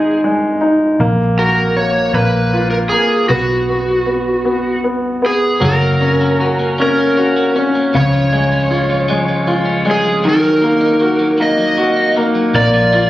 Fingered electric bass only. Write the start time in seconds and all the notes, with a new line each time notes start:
Already playing: G#1
1.00 A#1
2.14 A#1
3.30 B1
5.61 F#1
7.95 C#2
10.24 D#2
12.54 A#1